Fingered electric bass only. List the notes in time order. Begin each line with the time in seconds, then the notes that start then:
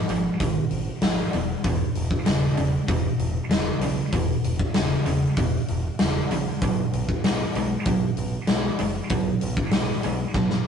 0.10 G#1
0.40 G#1
0.71 G#1
1.01 G#1
1.34 E1
1.64 E1
1.96 E1
2.26 E1
2.58 E1
2.88 E1
3.18 E1
3.49 E1
3.80 B1
4.13 E1
4.44 E1
4.74 E1
5.06 E1
5.37 E1
5.69 E1
6.00 E1
6.30 A#1
6.62 B1
6.93 B1
7.25 B1
7.56 B1
7.86 B1
8.17 B1
8.49 B1
8.80 F#1
9.10 B1
9.42 B1
9.74 B1
10.05 B1
10.34 B1